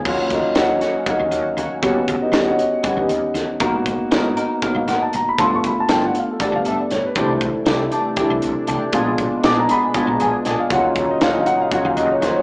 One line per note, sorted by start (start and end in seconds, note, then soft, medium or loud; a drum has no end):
0.05 0.26 D#2 loud
0.05 0.51 F#3 medium
0.05 0.52 A#3 medium
0.05 0.21 A#3 medium
0.05 0.21 C#4 medium
0.05 0.52 C#4 medium
0.05 0.52 F4 medium
0.05 0.21 F#4 medium
0.05 kick loud
0.05 crash medium
0.30 0.41 D#2 medium
0.30 0.56 D#4 medium
0.30 0.56 F#4 medium
0.30 0.57 A#4 medium
0.30 0.57 D#5 medium
0.30 kick medium
0.30 snare soft
0.30 closed hi-hat medium
0.44 muted fretless electric bass stroke soft
0.55 0.77 D#2 medium
0.55 1.02 F#3 medium
0.55 0.72 A#3 medium
0.55 1.02 A#3 medium
0.55 0.72 C#4 medium
0.55 1.03 C#4 medium
0.55 0.72 F#4 medium
0.55 1.03 F#4 medium
0.55 1.05 C#5 medium
0.55 1.05 D#5 medium
0.55 1.05 F#5 medium
0.55 snare loud
0.55 closed hi-hat medium
0.81 0.97 C#4 soft
0.81 0.97 F#4 soft
0.81 snare soft
0.81 closed hi-hat medium
1.06 1.83 F#3 medium
1.06 1.22 A#3 medium
1.06 1.83 A#3 medium
1.06 1.23 C#4 medium
1.06 1.81 C#4 medium
1.06 1.81 D#4 medium
1.06 1.23 F#4 medium
1.06 1.81 F#4 soft
1.06 1.81 A#4 medium
1.06 1.80 D#5 medium
1.06 1.84 F5 medium
1.06 muted fretless electric bass stroke soft
1.06 kick loud
1.06 closed hi-hat medium
1.19 1.30 D#2 medium
1.31 1.42 D#2 medium
1.31 1.48 C#4 soft
1.31 1.48 F#4 soft
1.31 closed hi-hat medium
1.57 1.67 D#2 medium
1.57 1.73 A#3 soft
1.57 1.74 C#4 soft
1.57 1.74 F#4 medium
1.57 closed hi-hat medium
1.69 muted fretless electric bass stroke soft
1.82 2.03 D#2 loud
1.82 2.29 G3 medium
1.82 1.98 G3 medium
1.82 2.29 B3 medium
1.82 1.98 B3 medium
1.82 2.29 C#4 medium
1.82 1.98 C#4 medium
1.82 1.99 F#4 medium
1.82 2.29 F#4 medium
1.82 kick loud
1.82 closed hi-hat medium
2.08 2.19 D#2 medium
2.08 kick medium
2.08 closed hi-hat medium
2.19 2.47 D#4 medium
2.19 2.47 G4 medium
2.19 2.47 B4 medium
2.19 2.47 D#5 medium
2.19 muted fretless electric bass stroke soft
2.32 2.53 D#2 medium
2.32 2.49 G3 medium
2.32 2.80 G3 medium
2.32 2.49 B3 medium
2.32 2.80 B3 medium
2.32 2.49 C#4 medium
2.32 2.80 C#4 medium
2.32 2.49 F#4 medium
2.32 2.47 F#4 medium
2.32 snare loud
2.32 closed hi-hat medium
2.48 2.95 F#4 medium
2.48 2.95 C#5 medium
2.48 2.95 D#5 medium
2.48 2.85 F#5 medium
2.59 closed hi-hat medium
2.83 2.99 G3 medium
2.83 3.61 G3 medium
2.83 3.00 B3 medium
2.83 3.60 B3 medium
2.83 3.00 C#4 medium
2.83 3.62 C#4 medium
2.83 3.00 F#4 medium
2.83 3.62 F#5 medium
2.83 muted fretless electric bass stroke soft
2.83 kick loud
2.83 closed hi-hat medium
2.97 3.07 D#2 medium
2.97 3.60 D#4 medium
2.97 3.70 G4 medium
2.97 3.71 B4 medium
2.97 3.70 D#5 medium
3.09 3.20 D#2 medium
3.09 closed hi-hat medium
3.34 3.45 D#2 medium
3.34 snare soft
3.34 closed hi-hat medium
3.46 muted fretless electric bass stroke soft
3.60 3.81 G#1 loud
3.60 3.76 F#3 medium
3.60 4.07 A#3 medium
3.60 3.76 B3 medium
3.60 4.07 B3 medium
3.60 3.76 D#4 medium
3.60 4.07 D#4 medium
3.60 4.08 F#4 medium
3.60 3.76 A#4 medium
3.60 kick loud
3.60 closed hi-hat medium
3.86 3.96 G#1 medium
3.86 kick medium
3.86 closed hi-hat medium
3.99 muted fretless electric bass stroke soft
4.11 4.32 G#1 medium
4.11 4.27 F#3 medium
4.11 4.58 A#3 medium
4.11 4.27 B3 medium
4.11 4.58 B3 medium
4.11 4.27 D#4 medium
4.11 4.58 D#4 medium
4.11 4.59 F#4 medium
4.11 4.27 A#4 medium
4.11 snare loud
4.11 closed hi-hat medium
4.37 4.53 B3 soft
4.37 4.53 D#4 medium
4.37 4.52 A#4 medium
4.37 closed hi-hat medium
4.62 4.78 F#3 medium
4.62 5.39 A#3 medium
4.62 4.78 B3 medium
4.62 5.38 B3 medium
4.62 4.78 D#4 medium
4.62 5.39 D#4 medium
4.62 5.39 F#4 medium
4.62 4.78 A#4 medium
4.62 muted fretless electric bass stroke soft
4.62 kick loud
4.62 closed hi-hat medium
4.75 4.85 G#1 medium
4.75 4.88 F5 medium
4.87 4.98 G#1 medium
4.87 5.04 B3 soft
4.87 5.03 D#4 soft
4.87 5.03 A#4 medium
4.87 5.01 F#5 medium
4.87 snare soft
4.87 closed hi-hat medium
5.03 5.14 A5 medium
5.13 5.24 G#1 medium
5.13 5.27 A#5 medium
5.13 closed hi-hat medium
5.26 5.40 B5 medium
5.26 muted fretless electric bass stroke soft
5.38 5.59 G1 loud
5.38 5.54 F3 medium
5.38 5.85 A3 medium
5.38 5.54 B3 medium
5.38 5.85 B3 medium
5.38 5.54 D4 medium
5.38 5.85 D4 medium
5.38 5.86 F4 medium
5.38 5.54 A4 medium
5.38 5.52 C6 medium
5.38 kick loud
5.38 closed hi-hat medium
5.56 5.66 C#6 medium
5.64 5.74 G1 medium
5.64 5.78 B5 medium
5.64 kick medium
5.64 closed hi-hat medium
5.77 5.91 A5 medium
5.77 muted fretless electric bass stroke soft
5.88 6.09 G1 medium
5.88 6.05 F3 medium
5.88 6.36 A3 medium
5.88 6.36 B3 medium
5.88 6.05 B3 medium
5.88 6.36 D4 medium
5.88 6.05 D4 medium
5.88 6.36 F4 medium
5.88 6.05 A4 medium
5.88 snare loud
5.88 closed hi-hat medium
5.93 6.04 G5 medium
6.06 6.17 F#5 medium
6.15 closed hi-hat medium
6.19 6.29 F5 medium
6.31 6.42 A4 medium
6.40 6.56 F3 medium
6.40 7.15 A3 medium
6.40 6.56 B3 medium
6.40 7.17 B3 medium
6.40 6.56 D4 medium
6.40 7.16 D4 medium
6.40 7.17 G4 medium
6.40 6.56 A4 medium
6.40 6.53 D5 medium
6.40 muted fretless electric bass stroke soft
6.40 kick loud
6.40 snare soft
6.40 closed hi-hat medium
6.52 6.63 G1 medium
6.52 6.67 F5 medium
6.65 6.75 G1 medium
6.65 6.82 B3 soft
6.65 6.81 D4 soft
6.65 6.81 A4 soft
6.65 6.79 E5 medium
6.65 closed hi-hat medium
6.80 6.92 D5 medium
6.91 7.01 G1 medium
6.91 7.04 C#5 medium
6.91 snare soft
6.91 closed hi-hat medium
7.03 7.17 B4 medium
7.03 muted fretless electric bass stroke soft
7.15 7.36 C2 loud
7.15 8.93 C3 medium
7.15 8.92 E3 medium
7.15 7.32 E3 medium
7.15 7.63 G3 medium
7.15 8.93 A3 medium
7.15 7.63 A3 medium
7.15 7.32 A3 medium
7.15 10.68 D4 medium
7.15 7.32 D4 medium
7.15 7.63 D4 medium
7.15 7.63 E4 medium
7.15 7.32 G4 medium
7.15 8.66 C5 medium
7.15 kick loud
7.15 closed hi-hat medium
7.41 7.51 C2 medium
7.41 kick medium
7.41 closed hi-hat medium
7.53 muted fretless electric bass stroke soft
7.65 7.86 C2 medium
7.65 7.83 E3 medium
7.65 8.13 G3 medium
7.65 8.13 A3 medium
7.65 7.83 A3 medium
7.65 8.13 D4 medium
7.65 7.83 D4 medium
7.65 8.14 E4 medium
7.65 7.83 G4 medium
7.65 snare loud
7.65 closed hi-hat medium
7.92 8.08 A3 soft
7.92 8.08 D4 soft
7.92 8.08 G4 medium
7.92 closed hi-hat medium
8.16 8.33 E3 medium
8.16 8.94 G3 medium
8.16 8.33 A3 medium
8.16 8.94 A3 medium
8.16 8.33 D4 medium
8.16 8.92 D4 medium
8.16 8.94 E4 medium
8.16 8.33 G4 medium
8.16 muted fretless electric bass stroke soft
8.16 kick loud
8.16 closed hi-hat medium
8.30 8.41 C2 medium
8.42 8.53 C2 medium
8.42 closed hi-hat medium
8.67 8.79 C2 medium
8.67 8.83 E3 medium
8.67 8.84 A3 medium
8.67 8.84 D4 medium
8.67 8.84 G4 medium
8.67 closed hi-hat medium
8.82 muted fretless electric bass stroke soft
8.93 9.14 A#1 loud
8.93 12.42 A#2 medium
8.93 10.70 B2 medium
8.93 9.09 F3 medium
8.93 9.39 G#3 medium
8.93 10.69 G#3 medium
8.93 9.40 B3 medium
8.93 9.09 B3 medium
8.93 9.40 D4 medium
8.93 9.09 D4 medium
8.93 9.40 F4 medium
8.93 9.10 G#4 medium
8.93 kick loud
8.93 closed hi-hat medium
9.18 9.29 A#1 medium
9.18 kick medium
9.18 closed hi-hat medium
9.32 muted fretless electric bass stroke soft
9.44 9.65 A#1 medium
9.44 9.60 F3 medium
9.44 9.91 G#3 medium
9.44 9.60 B3 medium
9.44 9.91 B3 medium
9.44 9.60 D4 medium
9.44 9.91 D4 medium
9.44 9.60 G#4 medium
9.44 9.91 G#4 medium
9.44 9.57 D6 loud
9.44 snare loud
9.44 closed hi-hat medium
9.59 9.71 A#5 medium
9.69 9.86 B3 soft
9.69 9.85 D4 soft
9.69 9.85 G#4 soft
9.69 10.06 B5 medium
9.69 closed hi-hat medium
9.94 10.10 F3 medium
9.94 10.71 G#3 medium
9.94 10.11 B3 medium
9.94 10.71 B3 medium
9.94 10.11 D4 medium
9.94 10.72 D4 medium
9.94 10.71 F4 medium
9.94 10.11 G#4 medium
9.94 muted fretless electric bass stroke soft
9.94 kick loud
9.94 closed hi-hat medium
10.07 10.18 A#1 medium
10.07 10.21 A#5 medium
10.20 10.31 A#1 medium
10.20 10.36 B3 soft
10.20 10.36 D4 soft
10.20 10.36 G#4 medium
10.20 10.34 G#5 medium
10.20 closed hi-hat medium
10.36 10.47 B4 medium
10.45 10.56 A#1 medium
10.45 10.61 F3 medium
10.45 10.61 B3 soft
10.45 10.61 D4 medium
10.45 10.62 G#4 medium
10.45 10.59 D5 medium
10.45 snare soft
10.45 closed hi-hat medium
10.59 10.72 F5 medium
10.59 muted fretless electric bass stroke soft
10.70 10.91 D#2 loud
10.70 12.42 C#3 medium
10.70 11.17 F#3 medium
10.70 12.42 F#3 medium
10.70 10.86 A#3 medium
10.70 11.17 A#3 medium
10.70 10.87 C#4 medium
10.70 11.18 C#4 medium
10.70 12.42 D#4 medium
10.70 11.18 F4 medium
10.70 10.87 F#4 medium
10.70 10.85 F#5 medium
10.70 kick loud
10.70 closed hi-hat medium
10.86 10.97 F5 medium
10.95 11.06 D#2 medium
10.95 11.09 C#5 medium
10.95 kick medium
10.95 closed hi-hat medium
11.09 11.23 D#5 medium
11.09 muted fretless electric bass stroke soft
11.21 11.42 D#2 medium
11.21 11.68 F#3 medium
11.21 11.37 A#3 medium
11.21 11.68 A#3 medium
11.21 11.37 C#4 medium
11.21 11.68 C#4 medium
11.21 11.68 F4 medium
11.21 11.37 F#4 medium
11.21 11.31 F5 medium
11.21 snare loud
11.21 closed hi-hat medium
11.31 11.39 D#5 medium
11.40 11.48 F5 medium
11.46 11.59 F#5 loud
11.46 closed hi-hat medium
11.62 11.73 F5 medium
11.71 12.42 F#3 medium
11.71 11.87 A#3 medium
11.71 12.42 A#3 medium
11.71 11.88 C#4 medium
11.71 12.42 C#4 medium
11.71 12.42 F4 medium
11.71 11.88 F#4 medium
11.71 11.86 F#5 medium
11.71 muted fretless electric bass stroke soft
11.71 kick loud
11.71 closed hi-hat medium
11.85 11.95 D#2 medium
11.85 11.98 F5 medium
11.97 12.07 D#2 medium
11.97 12.13 C#4 soft
11.97 12.12 F#4 medium
11.97 12.10 D#5 medium
11.97 closed hi-hat medium
12.12 12.23 C#5 medium
12.21 12.33 D#2 medium
12.21 12.37 A#3 soft
12.21 12.38 C#4 medium
12.21 12.38 F#4 medium
12.21 12.36 C5 medium
12.21 snare soft
12.21 closed hi-hat medium
12.35 12.42 C#5 medium
12.35 muted fretless electric bass stroke soft